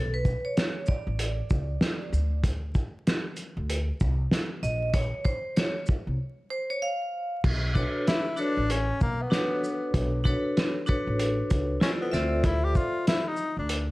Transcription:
0.00 0.32 B1 medium
0.00 0.14 A4 medium
0.14 0.46 B4 medium
0.25 kick medium
0.25 shaker soft
0.45 0.89 C#5 medium
0.57 snare loud
0.57 closed hi-hat medium
0.86 2.40 D5 medium
0.86 kick medium
0.86 shaker soft
1.07 1.40 A1 medium
1.19 closed hi-hat loud
1.50 1.74 C#2 medium
1.50 kick medium
1.50 shaker medium
1.81 snare loud
1.81 closed hi-hat medium
2.13 2.74 D2 medium
2.13 shaker medium
2.44 kick loud
2.44 closed hi-hat medium
2.75 kick medium
2.75 shaker medium
3.07 snare loud
3.07 closed hi-hat medium
3.37 closed hi-hat soft
3.37 shaker soft
3.57 3.89 D2 medium
3.70 closed hi-hat medium
4.00 4.24 C2 medium
4.00 kick medium
4.00 shaker medium
4.31 snare loud
4.31 closed hi-hat medium
4.63 5.10 A#1 loud
4.63 4.95 D#5 loud
4.63 shaker medium
4.94 5.26 C#5 loud
4.94 kick loud
4.94 closed hi-hat medium
5.25 5.54 C5 medium
5.25 kick medium
5.25 shaker medium
5.56 5.86 C#5 medium
5.56 snare loud
5.56 closed hi-hat medium
5.86 kick medium
5.86 shaker soft
6.07 6.16 C2 medium
6.50 6.70 C5 medium
6.70 6.82 C#5 medium
6.82 7.40 F5 medium
7.44 7.82 B1 loud
7.44 kick loud
7.44 crash medium
7.74 8.21 D4 medium
7.74 8.22 F#4 medium
7.74 8.22 A4 medium
7.74 8.22 B4 medium
7.74 8.23 C#5 medium
7.74 kick medium
7.74 shaker soft
8.07 8.41 E4 loud
8.07 snare loud
8.07 closed hi-hat medium
8.36 8.61 D4 medium
8.36 8.73 D4 loud
8.36 8.61 F#4 medium
8.36 8.62 A4 medium
8.36 8.62 B4 medium
8.36 8.63 C#5 medium
8.36 shaker soft
8.57 8.90 A1 medium
8.70 9.01 C#4 loud
8.70 closed hi-hat medium
9.01 9.25 B1 medium
9.01 9.23 A#3 medium
9.01 kick medium
9.01 shaker medium
9.22 10.14 B3 medium
9.30 10.20 D4 medium
9.30 10.20 F#4 medium
9.30 10.21 A4 medium
9.30 10.21 B4 medium
9.30 10.21 C#5 medium
9.30 snare loud
9.30 closed hi-hat medium
9.64 shaker medium
9.94 10.32 B1 medium
9.94 kick loud
9.94 closed hi-hat medium
10.24 10.71 D4 medium
10.24 10.72 F#4 medium
10.24 10.72 A4 medium
10.24 10.72 B4 medium
10.24 10.73 C#5 loud
10.24 kick medium
10.24 shaker soft
10.57 snare loud
10.57 closed hi-hat medium
10.86 11.76 D4 medium
10.86 11.76 F#4 medium
10.86 11.77 A4 medium
10.86 11.77 B4 medium
10.86 11.77 C#5 medium
10.86 kick medium
10.86 shaker soft
11.07 11.40 A1 medium
11.19 closed hi-hat medium
11.50 11.74 C#2 medium
11.50 kick medium
11.50 closed hi-hat medium
11.50 shaker medium
11.80 11.91 C#4 medium
11.80 12.28 E4 medium
11.80 12.11 F4 medium
11.80 12.12 A4 medium
11.80 12.13 C5 medium
11.80 12.13 D5 medium
11.80 snare loud
11.80 closed hi-hat medium
12.02 12.15 B3 medium
12.12 12.75 D2 loud
12.12 12.46 C4 medium
12.12 13.14 F4 medium
12.12 13.15 A4 medium
12.12 13.15 C5 medium
12.12 13.15 D5 medium
12.12 13.14 E5 medium
12.12 snare soft
12.12 shaker medium
12.44 12.66 E4 loud
12.44 kick loud
12.44 closed hi-hat medium
12.64 12.77 G4 loud
12.75 13.07 F4 loud
12.75 kick medium
12.75 shaker soft
13.07 13.29 E4 loud
13.07 snare loud
13.07 closed hi-hat medium
13.27 13.58 D#4 medium
13.37 shaker soft
13.57 13.90 D2 medium
13.57 13.87 D4 medium
13.69 closed hi-hat medium

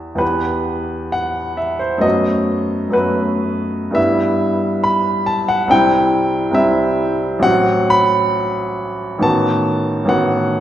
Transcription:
0.00 0.14 E2 soft
0.00 0.15 E3 soft
0.00 0.16 B3 soft
0.00 0.17 G4 soft
0.00 0.23 E5 medium
0.15 1.97 E2 soft
0.15 1.98 E3 soft
0.15 1.98 B3 soft
0.15 1.99 G4 soft
0.15 1.13 B4 medium
1.12 1.59 F#5 medium
1.57 1.81 E5 soft
1.79 2.03 C5 medium
1.98 2.88 F#2 soft
1.98 2.90 A3 soft
1.98 2.90 B3 soft
1.98 2.94 D#5 medium
2.02 2.92 F#4 soft
2.89 3.91 F#2 soft
2.89 3.92 A3 soft
2.89 3.92 B3 soft
2.93 3.93 F#4 soft
2.93 3.96 B4 medium
3.91 5.65 G2 soft
3.91 5.66 G3 soft
3.91 5.67 B3 soft
3.91 5.67 E4 soft
3.95 4.85 E5 medium
4.84 5.28 B5 medium
5.26 5.49 A5 medium
5.48 5.71 F#5 medium
5.68 6.49 C2 medium
5.68 6.51 G3 soft
5.68 6.52 C4 soft
5.68 6.53 E4 soft
5.68 6.55 G5 medium
6.51 7.39 C2 soft
6.51 7.40 G3 soft
6.51 7.40 C4 soft
6.51 7.41 E4 soft
6.51 7.43 E5 medium
7.39 9.17 A1 medium
7.39 9.19 F#3 soft
7.39 9.20 C4 soft
7.39 9.20 F#4 soft
7.39 7.92 F#5 medium
7.90 9.24 B5 medium
9.19 10.04 A1 medium
9.19 10.05 D#3 soft
9.19 10.06 B3 soft
9.19 10.06 F#4 soft
9.19 10.09 A5 medium
10.05 10.60 A1 medium
10.05 10.60 D#3 soft
10.05 10.60 B3 soft
10.05 10.60 F#4 soft
10.05 10.60 F#5 medium

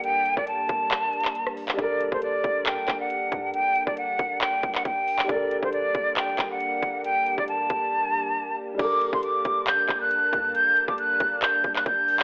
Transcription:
0.00 0.15 A#1 loud
0.00 1.72 G3 medium
0.00 5.25 G3 medium
0.00 5.25 A#3 medium
0.00 1.74 D4 medium
0.00 1.75 D4 medium
0.00 1.76 A4 medium
0.00 1.77 A#4 medium
0.00 0.35 G5 loud
0.00 7.00 A5 medium
0.00 closed hi-hat medium
0.26 closed hi-hat medium
0.37 0.60 G1 loud
0.37 0.45 D5 medium
0.37 kick medium
0.47 1.49 A5 medium
0.47 closed hi-hat medium
0.59 0.69 A1 medium
0.69 0.90 G1 loud
0.69 kick loud
0.69 closed hi-hat medium
0.91 clap loud
0.91 closed hi-hat medium
1.13 closed hi-hat soft
1.20 closed hi-hat medium
1.25 clap medium
1.25 closed hi-hat medium
1.35 closed hi-hat medium
1.47 cross-stick medium
1.57 open hi-hat medium
1.68 clap medium
1.74 5.23 G3 medium
1.74 5.24 D4 medium
1.79 2.11 G1 loud
1.79 5.26 D4 medium
1.79 5.26 A4 medium
1.79 2.11 D5 loud
1.79 kick loud
1.79 closed hi-hat medium
1.84 5.28 A#4 medium
2.01 closed hi-hat medium
2.12 2.43 A#1 loud
2.12 2.21 C5 medium
2.12 kick medium
2.22 2.64 D5 medium
2.22 closed hi-hat medium
2.44 2.68 G1 loud
2.44 kick medium
2.44 closed hi-hat medium
2.66 2.79 G2 loud
2.66 2.98 G5 medium
2.66 clap loud
2.66 closed hi-hat medium
2.78 2.88 G1 loud
2.88 3.30 G1 loud
2.88 kick medium
2.88 clap medium
2.88 closed hi-hat medium
3.00 3.51 F#5 medium
3.10 closed hi-hat medium
3.32 3.55 G2 loud
3.32 kick loud
3.32 closed hi-hat medium
3.54 3.65 A1 loud
3.54 3.85 G5 loud
3.54 closed hi-hat medium
3.76 closed hi-hat medium
3.87 4.18 G1 loud
3.87 3.95 D5 medium
3.87 kick medium
3.97 4.39 F#5 medium
3.97 closed hi-hat medium
4.19 4.41 G1 loud
4.19 kick loud
4.19 closed hi-hat medium
4.41 4.73 G5 medium
4.41 clap loud
4.41 closed hi-hat medium
4.63 4.84 G1 loud
4.63 kick loud
4.63 closed hi-hat medium
4.75 4.83 F#5 medium
4.75 clap medium
4.85 5.27 G1 loud
4.85 5.26 G5 medium
4.85 kick loud
4.85 closed hi-hat medium
5.08 open hi-hat medium
5.19 clap loud
5.24 8.73 G3 medium
5.24 8.75 D4 medium
5.29 5.61 G1 loud
5.29 8.76 G3 medium
5.29 8.76 A#3 loud
5.29 8.76 D4 medium
5.29 8.76 A4 medium
5.29 5.61 D5 medium
5.29 kick loud
5.29 closed hi-hat medium
5.34 8.78 A#4 medium
5.51 closed hi-hat medium
5.63 5.93 G1 loud
5.63 5.71 C5 medium
5.63 kick medium
5.73 6.14 D5 medium
5.73 closed hi-hat medium
5.94 6.37 A#1 loud
5.94 kick loud
5.94 closed hi-hat medium
6.17 6.48 G5 medium
6.17 clap loud
6.17 closed hi-hat medium
6.38 6.60 G1 loud
6.38 kick medium
6.38 clap medium
6.38 closed hi-hat medium
6.51 7.01 F#5 medium
6.60 closed hi-hat medium
6.82 7.06 G1 loud
6.82 kick loud
6.82 closed hi-hat medium
7.04 7.15 A#1 loud
7.04 8.78 G4 medium
7.04 7.36 G5 loud
7.04 closed hi-hat medium
7.26 closed hi-hat medium
7.38 7.61 G1 loud
7.38 7.46 D5 medium
7.38 kick medium
7.48 8.56 A5 loud
7.48 closed hi-hat medium
7.60 7.69 A1 loud
7.70 7.91 G1 loud
7.70 kick loud
7.70 closed hi-hat medium
8.75 12.23 G3 medium
8.75 12.23 D4 medium
8.79 9.12 G1 loud
8.79 12.23 G3 medium
8.79 12.23 A#3 loud
8.79 12.23 D4 medium
8.79 12.23 A4 medium
8.79 12.23 A5 medium
8.79 9.11 D6 loud
8.79 kick loud
8.79 closed hi-hat medium
8.79 crash loud
8.84 12.23 A#4 medium
9.01 closed hi-hat medium
9.13 9.44 A#1 loud
9.13 9.21 C6 medium
9.13 kick medium
9.23 9.65 D6 medium
9.23 closed hi-hat medium
9.45 9.69 G1 loud
9.45 kick loud
9.45 closed hi-hat medium
9.67 9.80 G2 loud
9.67 9.99 G6 medium
9.67 clap loud
9.67 closed hi-hat medium
9.79 9.88 G1 loud
9.89 10.31 G1 loud
9.89 kick loud
9.89 clap medium
9.89 closed hi-hat medium
10.01 10.51 F#6 medium
10.11 closed hi-hat medium
10.33 10.56 G2 loud
10.33 kick loud
10.33 closed hi-hat medium
10.55 10.66 A1 loud
10.55 10.86 G6 loud
10.55 closed hi-hat medium
10.77 closed hi-hat medium
10.88 11.19 G1 loud
10.88 10.96 D6 medium
10.88 kick medium
10.98 11.40 F#6 loud
10.98 closed hi-hat medium
11.20 11.41 G1 loud
11.20 kick loud
11.20 closed hi-hat medium
11.42 11.74 G6 medium
11.42 clap loud
11.42 closed hi-hat medium
11.64 11.85 G1 loud
11.64 kick loud
11.64 closed hi-hat medium
11.76 11.84 F#6 medium
11.76 clap medium
11.86 12.23 G1 loud
11.86 12.23 G6 medium
11.86 kick loud
11.86 closed hi-hat medium
12.08 open hi-hat medium
12.19 clap loud

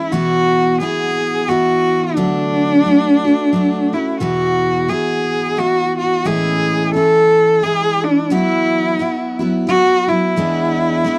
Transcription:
0.00 0.13 G#3 soft
0.00 0.13 C#4 soft
0.00 0.11 E4 medium
0.00 0.14 E4 loud
0.12 0.80 E2 medium
0.12 0.81 B2 medium
0.12 0.79 E3 medium
0.12 0.80 B3 medium
0.12 0.81 E4 medium
0.12 0.81 F#4 loud
0.12 0.83 F#4 medium
0.80 1.47 E3 medium
0.80 1.48 B3 medium
0.80 1.49 E4 medium
0.80 1.51 F#4 medium
0.80 1.50 G#4 loud
1.48 2.17 E3 medium
1.48 2.17 B3 medium
1.48 2.18 E4 medium
1.48 2.17 F#4 loud
1.48 2.18 F#4 medium
2.15 2.85 D3 medium
2.15 2.84 F#3 loud
2.15 2.85 A3 medium
2.15 3.95 D4 loud
2.15 2.87 F#4 medium
2.85 3.25 F#3 medium
2.85 3.26 A3 medium
2.85 3.23 F#4 medium
3.24 3.53 A3 soft
3.24 3.53 F#4 medium
3.53 3.93 F#3 medium
3.53 3.94 A3 medium
3.53 3.92 F#4 medium
3.93 4.21 A3 soft
3.93 4.21 C#4 medium
3.93 4.20 E4 medium
3.93 4.21 F#4 soft
4.20 4.89 E2 medium
4.20 4.89 B2 medium
4.20 4.88 E3 medium
4.20 4.88 B3 medium
4.20 4.90 E4 medium
4.20 4.91 F#4 loud
4.20 4.90 F#4 loud
4.88 5.57 E3 medium
4.88 5.57 B3 medium
4.88 5.58 E4 medium
4.88 5.59 F#4 medium
4.88 5.60 G#4 loud
5.57 6.25 E3 medium
5.57 6.26 B3 medium
5.57 6.26 E4 medium
5.57 5.98 F#4 loud
5.57 6.27 F#4 medium
5.98 6.27 F#4 loud
6.25 6.94 A2 medium
6.25 6.93 E3 medium
6.25 6.95 G#3 medium
6.25 6.94 C#4 loud
6.25 6.96 E4 medium
6.25 6.94 G#4 loud
6.94 7.62 E3 medium
6.94 7.64 C#4 medium
6.94 7.65 E4 medium
6.94 7.65 A4 loud
7.62 8.31 E3 medium
7.62 8.31 G#3 medium
7.62 8.32 E4 medium
7.62 8.06 G#4 loud
8.04 8.33 D4 loud
8.30 8.99 E2 medium
8.30 9.02 E3 medium
8.30 8.98 F#3 medium
8.30 9.00 B3 medium
8.30 9.40 E4 loud
8.30 9.01 E4 loud
8.30 9.00 F#4 medium
8.99 9.40 F#3 medium
8.99 9.40 B3 medium
8.99 9.38 E4 medium
8.99 9.39 F#4 medium
9.39 9.66 F#3 medium
9.39 9.67 B3 medium
9.39 9.68 E4 medium
9.39 9.68 F#4 medium
9.67 10.08 F#3 medium
9.67 10.08 B3 medium
9.67 10.06 E4 medium
9.67 10.10 F#4 loud
9.67 10.07 F#4 medium
10.08 10.37 F#3 soft
10.08 10.37 B3 soft
10.08 10.36 E4 medium
10.08 11.19 E4 loud
10.08 10.37 F#4 soft
10.36 11.05 E2 medium
10.36 11.06 E3 medium
10.36 11.03 G#3 medium
10.36 11.06 B3 loud
10.36 11.05 D4 medium
10.36 11.06 E4 medium
11.04 11.19 G#3 medium
11.04 11.19 B3 medium
11.04 11.19 D4 medium
11.04 11.19 E4 medium

